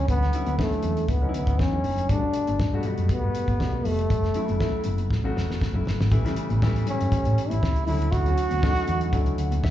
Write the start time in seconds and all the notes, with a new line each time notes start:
Already playing: D3 F#3 C#4 E4
0.08 D2 B3, kick, closed hi-hat, muted conga, low conga
0.22 snare, closed hi-hat, muted conga
0.33 D3 F#3 C#4 E4, closed hi-hat
0.46 D2, closed hi-hat, high conga
0.58 D3 F3 A3 C#4 E4, kick, snare
0.65 F#3
0.72 closed hi-hat
0.83 E2, closed hi-hat, high conga, low conga
0.97 closed hi-hat
1.08 C#2 B3, kick, closed hi-hat
1.21 D3 F#3 C#4 D#4
1.29 E4
1.34 D2 B3, closed hi-hat
1.47 kick, closed hi-hat, high conga
1.59 E2 C#4, kick, snare
1.72 D3 F#3 C#4 E4, high conga
1.84 F#1, open hi-hat, low conga
1.98 closed hi-hat
2.09 G1 A#2 G3 A3 D4 F#4, kick, closed hi-hat, muted conga, low conga
2.15 B2
2.34 closed hi-hat
2.47 G1, closed hi-hat, high conga
2.60 G2, kick, snare, muted conga
2.73 B2 G3 A3 F#4, muted conga
2.83 B2 G3 A3 F#4, closed hi-hat, high conga, low conga
2.98 F#2, closed hi-hat
3.09 B2 G3 A3 B3 F#4, kick, closed hi-hat, muted conga
3.24 G2
3.35 closed hi-hat
3.48 G1, kick, closed hi-hat, high conga
3.59 B1 B2 G3 A3 F#4, kick, snare, muted conga
3.73 muted conga, high conga
3.85 F1 A3, open hi-hat, low conga
3.99 closed hi-hat
4.10 F#1, kick, closed hi-hat, low conga
4.24 snare, closed hi-hat
4.34 C#3 F#3 A3 E4, closed hi-hat
4.48 F#1, closed hi-hat, high conga
4.60 C#3 F#3 A3 E4, kick, snare
4.84 F#1, closed hi-hat, high conga, low conga
4.98 closed hi-hat
5.10 A1, kick, snare, muted conga
5.24 C#3 F#3 A3 F#4
5.37 E1, snare
5.49 snare, high conga
5.61 kick, snare
5.73 F#1 C#3 F#3 A3 E4, high conga
5.85 G1, snare, low conga
6.00 G#1, snare
6.11 A1 C#3 E3 G3 A3 E4, kick, closed hi-hat, muted conga
6.25 C#3 E3 G3 A3 E4, snare, closed hi-hat
6.36 closed hi-hat
6.49 A1, closed hi-hat, high conga
6.62 A2 C#3 E3 G3 A3 E4, kick, snare
6.76 closed hi-hat
6.86 C#4, closed hi-hat, high conga, low conga
7.01 G2, closed hi-hat
7.11 C#3 E3 G3 A3 C#4, muted fingered electric bass stroke, kick, closed hi-hat, muted conga
7.25 A2, closed hi-hat, muted conga
7.38 closed hi-hat
7.49 A1 E4, closed hi-hat, high conga
7.63 C#2, kick, snare
7.75 closed hi-hat, muted conga
7.87 D2 D3 F#3 A3 C#4 E4, open hi-hat, low conga
8.02 closed hi-hat
8.12 D2 F#4, kick, closed hi-hat, muted conga
8.26 D3 F#3 A3 C#4 F#4, closed hi-hat, muted conga
8.38 closed hi-hat
8.51 D2, closed hi-hat, high conga
8.62 D3 F#3 A3 C#4 D#4, kick, snare, muted conga
8.70 E4
8.76 closed hi-hat, muted conga
8.87 E2, closed hi-hat, high conga, low conga
9.01 closed hi-hat
9.13 C#2 D3 F#3 A3 C#4 E4, kick, closed hi-hat
9.26 closed hi-hat, muted conga
9.38 D2 F#5, closed hi-hat
9.51 closed hi-hat, high conga
9.64 E2 E5, kick, snare